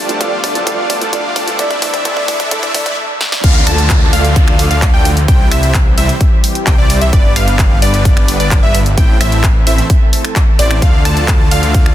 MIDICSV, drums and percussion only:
0, 0, Header, 1, 2, 480
1, 0, Start_track
1, 0, Tempo, 461538
1, 1655, Time_signature, 4, 2, 24, 8
1, 12425, End_track
2, 0, Start_track
2, 0, Title_t, "Drums"
2, 95, Note_on_c, 9, 42, 55
2, 199, Note_off_c, 9, 42, 0
2, 214, Note_on_c, 9, 36, 104
2, 215, Note_on_c, 9, 42, 79
2, 318, Note_off_c, 9, 36, 0
2, 319, Note_off_c, 9, 42, 0
2, 454, Note_on_c, 9, 36, 106
2, 455, Note_on_c, 9, 46, 85
2, 558, Note_off_c, 9, 36, 0
2, 559, Note_off_c, 9, 46, 0
2, 576, Note_on_c, 9, 42, 57
2, 680, Note_off_c, 9, 42, 0
2, 694, Note_on_c, 9, 36, 110
2, 695, Note_on_c, 9, 42, 85
2, 798, Note_off_c, 9, 36, 0
2, 799, Note_off_c, 9, 42, 0
2, 934, Note_on_c, 9, 36, 109
2, 935, Note_on_c, 9, 46, 100
2, 1038, Note_off_c, 9, 36, 0
2, 1039, Note_off_c, 9, 46, 0
2, 1055, Note_on_c, 9, 42, 54
2, 1159, Note_off_c, 9, 42, 0
2, 1174, Note_on_c, 9, 36, 108
2, 1175, Note_on_c, 9, 42, 80
2, 1278, Note_off_c, 9, 36, 0
2, 1279, Note_off_c, 9, 42, 0
2, 1414, Note_on_c, 9, 36, 107
2, 1415, Note_on_c, 9, 46, 85
2, 1518, Note_off_c, 9, 36, 0
2, 1519, Note_off_c, 9, 46, 0
2, 1534, Note_on_c, 9, 42, 56
2, 1638, Note_off_c, 9, 42, 0
2, 1654, Note_on_c, 9, 36, 106
2, 1654, Note_on_c, 9, 42, 83
2, 1758, Note_off_c, 9, 36, 0
2, 1758, Note_off_c, 9, 42, 0
2, 1774, Note_on_c, 9, 36, 91
2, 1774, Note_on_c, 9, 42, 37
2, 1878, Note_off_c, 9, 36, 0
2, 1878, Note_off_c, 9, 42, 0
2, 1894, Note_on_c, 9, 36, 109
2, 1894, Note_on_c, 9, 46, 101
2, 1998, Note_off_c, 9, 36, 0
2, 1998, Note_off_c, 9, 46, 0
2, 2014, Note_on_c, 9, 36, 89
2, 2014, Note_on_c, 9, 42, 55
2, 2118, Note_off_c, 9, 36, 0
2, 2118, Note_off_c, 9, 42, 0
2, 2134, Note_on_c, 9, 36, 107
2, 2134, Note_on_c, 9, 42, 86
2, 2238, Note_off_c, 9, 36, 0
2, 2238, Note_off_c, 9, 42, 0
2, 2254, Note_on_c, 9, 36, 94
2, 2358, Note_off_c, 9, 36, 0
2, 2374, Note_on_c, 9, 36, 105
2, 2374, Note_on_c, 9, 46, 88
2, 2478, Note_off_c, 9, 36, 0
2, 2478, Note_off_c, 9, 46, 0
2, 2494, Note_on_c, 9, 36, 91
2, 2494, Note_on_c, 9, 42, 56
2, 2598, Note_off_c, 9, 36, 0
2, 2598, Note_off_c, 9, 42, 0
2, 2614, Note_on_c, 9, 36, 106
2, 2614, Note_on_c, 9, 42, 89
2, 2718, Note_off_c, 9, 36, 0
2, 2718, Note_off_c, 9, 42, 0
2, 2734, Note_on_c, 9, 42, 41
2, 2735, Note_on_c, 9, 36, 89
2, 2838, Note_off_c, 9, 42, 0
2, 2839, Note_off_c, 9, 36, 0
2, 2855, Note_on_c, 9, 36, 105
2, 2855, Note_on_c, 9, 46, 103
2, 2959, Note_off_c, 9, 36, 0
2, 2959, Note_off_c, 9, 46, 0
2, 2974, Note_on_c, 9, 42, 59
2, 2975, Note_on_c, 9, 36, 97
2, 3078, Note_off_c, 9, 42, 0
2, 3079, Note_off_c, 9, 36, 0
2, 3335, Note_on_c, 9, 38, 64
2, 3439, Note_off_c, 9, 38, 0
2, 3455, Note_on_c, 9, 38, 78
2, 3559, Note_off_c, 9, 38, 0
2, 3575, Note_on_c, 9, 36, 126
2, 3575, Note_on_c, 9, 42, 87
2, 3575, Note_on_c, 9, 49, 103
2, 3679, Note_off_c, 9, 36, 0
2, 3679, Note_off_c, 9, 42, 0
2, 3679, Note_off_c, 9, 49, 0
2, 3815, Note_on_c, 9, 26, 67
2, 3815, Note_on_c, 9, 46, 110
2, 3919, Note_off_c, 9, 26, 0
2, 3919, Note_off_c, 9, 46, 0
2, 3936, Note_on_c, 9, 42, 57
2, 4040, Note_off_c, 9, 42, 0
2, 4053, Note_on_c, 9, 39, 124
2, 4055, Note_on_c, 9, 36, 120
2, 4055, Note_on_c, 9, 42, 86
2, 4157, Note_off_c, 9, 39, 0
2, 4159, Note_off_c, 9, 36, 0
2, 4159, Note_off_c, 9, 42, 0
2, 4295, Note_on_c, 9, 46, 91
2, 4399, Note_off_c, 9, 46, 0
2, 4415, Note_on_c, 9, 42, 56
2, 4519, Note_off_c, 9, 42, 0
2, 4535, Note_on_c, 9, 36, 121
2, 4535, Note_on_c, 9, 42, 86
2, 4639, Note_off_c, 9, 36, 0
2, 4639, Note_off_c, 9, 42, 0
2, 4655, Note_on_c, 9, 26, 64
2, 4759, Note_off_c, 9, 26, 0
2, 4775, Note_on_c, 9, 46, 108
2, 4879, Note_off_c, 9, 46, 0
2, 4896, Note_on_c, 9, 42, 56
2, 5000, Note_off_c, 9, 42, 0
2, 5014, Note_on_c, 9, 39, 125
2, 5015, Note_on_c, 9, 36, 122
2, 5016, Note_on_c, 9, 42, 85
2, 5118, Note_off_c, 9, 39, 0
2, 5119, Note_off_c, 9, 36, 0
2, 5120, Note_off_c, 9, 42, 0
2, 5255, Note_on_c, 9, 46, 93
2, 5359, Note_off_c, 9, 46, 0
2, 5376, Note_on_c, 9, 42, 58
2, 5480, Note_off_c, 9, 42, 0
2, 5495, Note_on_c, 9, 36, 127
2, 5495, Note_on_c, 9, 42, 84
2, 5599, Note_off_c, 9, 36, 0
2, 5599, Note_off_c, 9, 42, 0
2, 5736, Note_on_c, 9, 26, 67
2, 5736, Note_on_c, 9, 46, 114
2, 5840, Note_off_c, 9, 26, 0
2, 5840, Note_off_c, 9, 46, 0
2, 5856, Note_on_c, 9, 42, 54
2, 5960, Note_off_c, 9, 42, 0
2, 5973, Note_on_c, 9, 39, 127
2, 5974, Note_on_c, 9, 36, 121
2, 5975, Note_on_c, 9, 42, 78
2, 6077, Note_off_c, 9, 39, 0
2, 6078, Note_off_c, 9, 36, 0
2, 6079, Note_off_c, 9, 42, 0
2, 6215, Note_on_c, 9, 46, 93
2, 6319, Note_off_c, 9, 46, 0
2, 6335, Note_on_c, 9, 42, 54
2, 6439, Note_off_c, 9, 42, 0
2, 6455, Note_on_c, 9, 36, 127
2, 6455, Note_on_c, 9, 42, 85
2, 6559, Note_off_c, 9, 36, 0
2, 6559, Note_off_c, 9, 42, 0
2, 6695, Note_on_c, 9, 46, 112
2, 6799, Note_off_c, 9, 46, 0
2, 6815, Note_on_c, 9, 42, 57
2, 6919, Note_off_c, 9, 42, 0
2, 6933, Note_on_c, 9, 39, 125
2, 6935, Note_on_c, 9, 36, 127
2, 6935, Note_on_c, 9, 42, 80
2, 7037, Note_off_c, 9, 39, 0
2, 7039, Note_off_c, 9, 36, 0
2, 7039, Note_off_c, 9, 42, 0
2, 7175, Note_on_c, 9, 46, 98
2, 7279, Note_off_c, 9, 46, 0
2, 7295, Note_on_c, 9, 42, 55
2, 7399, Note_off_c, 9, 42, 0
2, 7414, Note_on_c, 9, 36, 127
2, 7416, Note_on_c, 9, 42, 80
2, 7518, Note_off_c, 9, 36, 0
2, 7520, Note_off_c, 9, 42, 0
2, 7655, Note_on_c, 9, 26, 67
2, 7655, Note_on_c, 9, 46, 115
2, 7759, Note_off_c, 9, 26, 0
2, 7759, Note_off_c, 9, 46, 0
2, 7775, Note_on_c, 9, 42, 53
2, 7879, Note_off_c, 9, 42, 0
2, 7893, Note_on_c, 9, 39, 118
2, 7895, Note_on_c, 9, 36, 127
2, 7895, Note_on_c, 9, 42, 77
2, 7997, Note_off_c, 9, 39, 0
2, 7999, Note_off_c, 9, 36, 0
2, 7999, Note_off_c, 9, 42, 0
2, 8135, Note_on_c, 9, 46, 99
2, 8239, Note_off_c, 9, 46, 0
2, 8256, Note_on_c, 9, 42, 55
2, 8360, Note_off_c, 9, 42, 0
2, 8375, Note_on_c, 9, 36, 127
2, 8375, Note_on_c, 9, 42, 82
2, 8479, Note_off_c, 9, 36, 0
2, 8479, Note_off_c, 9, 42, 0
2, 8495, Note_on_c, 9, 26, 67
2, 8599, Note_off_c, 9, 26, 0
2, 8615, Note_on_c, 9, 46, 115
2, 8719, Note_off_c, 9, 46, 0
2, 8736, Note_on_c, 9, 42, 54
2, 8840, Note_off_c, 9, 42, 0
2, 8853, Note_on_c, 9, 39, 120
2, 8855, Note_on_c, 9, 36, 127
2, 8855, Note_on_c, 9, 42, 80
2, 8957, Note_off_c, 9, 39, 0
2, 8959, Note_off_c, 9, 36, 0
2, 8959, Note_off_c, 9, 42, 0
2, 9095, Note_on_c, 9, 46, 101
2, 9199, Note_off_c, 9, 46, 0
2, 9215, Note_on_c, 9, 42, 55
2, 9319, Note_off_c, 9, 42, 0
2, 9335, Note_on_c, 9, 36, 127
2, 9335, Note_on_c, 9, 42, 79
2, 9439, Note_off_c, 9, 36, 0
2, 9439, Note_off_c, 9, 42, 0
2, 9575, Note_on_c, 9, 26, 68
2, 9575, Note_on_c, 9, 46, 110
2, 9679, Note_off_c, 9, 26, 0
2, 9679, Note_off_c, 9, 46, 0
2, 9695, Note_on_c, 9, 42, 51
2, 9799, Note_off_c, 9, 42, 0
2, 9813, Note_on_c, 9, 39, 120
2, 9815, Note_on_c, 9, 36, 127
2, 9815, Note_on_c, 9, 42, 77
2, 9917, Note_off_c, 9, 39, 0
2, 9919, Note_off_c, 9, 36, 0
2, 9919, Note_off_c, 9, 42, 0
2, 10055, Note_on_c, 9, 46, 96
2, 10159, Note_off_c, 9, 46, 0
2, 10175, Note_on_c, 9, 42, 52
2, 10279, Note_off_c, 9, 42, 0
2, 10295, Note_on_c, 9, 36, 127
2, 10295, Note_on_c, 9, 42, 81
2, 10399, Note_off_c, 9, 36, 0
2, 10399, Note_off_c, 9, 42, 0
2, 10535, Note_on_c, 9, 46, 107
2, 10639, Note_off_c, 9, 46, 0
2, 10655, Note_on_c, 9, 26, 89
2, 10655, Note_on_c, 9, 42, 52
2, 10759, Note_off_c, 9, 26, 0
2, 10759, Note_off_c, 9, 42, 0
2, 10773, Note_on_c, 9, 39, 121
2, 10775, Note_on_c, 9, 36, 127
2, 10775, Note_on_c, 9, 42, 78
2, 10877, Note_off_c, 9, 39, 0
2, 10879, Note_off_c, 9, 36, 0
2, 10879, Note_off_c, 9, 42, 0
2, 11014, Note_on_c, 9, 46, 99
2, 11118, Note_off_c, 9, 46, 0
2, 11134, Note_on_c, 9, 26, 90
2, 11134, Note_on_c, 9, 42, 53
2, 11238, Note_off_c, 9, 26, 0
2, 11238, Note_off_c, 9, 42, 0
2, 11254, Note_on_c, 9, 36, 127
2, 11255, Note_on_c, 9, 42, 81
2, 11358, Note_off_c, 9, 36, 0
2, 11359, Note_off_c, 9, 42, 0
2, 11495, Note_on_c, 9, 26, 71
2, 11495, Note_on_c, 9, 46, 108
2, 11599, Note_off_c, 9, 26, 0
2, 11599, Note_off_c, 9, 46, 0
2, 11615, Note_on_c, 9, 42, 51
2, 11719, Note_off_c, 9, 42, 0
2, 11733, Note_on_c, 9, 39, 109
2, 11734, Note_on_c, 9, 36, 117
2, 11735, Note_on_c, 9, 42, 77
2, 11837, Note_off_c, 9, 39, 0
2, 11838, Note_off_c, 9, 36, 0
2, 11839, Note_off_c, 9, 42, 0
2, 11975, Note_on_c, 9, 46, 94
2, 12079, Note_off_c, 9, 46, 0
2, 12095, Note_on_c, 9, 42, 54
2, 12199, Note_off_c, 9, 42, 0
2, 12215, Note_on_c, 9, 36, 126
2, 12215, Note_on_c, 9, 42, 78
2, 12319, Note_off_c, 9, 36, 0
2, 12319, Note_off_c, 9, 42, 0
2, 12335, Note_on_c, 9, 26, 69
2, 12425, Note_off_c, 9, 26, 0
2, 12425, End_track
0, 0, End_of_file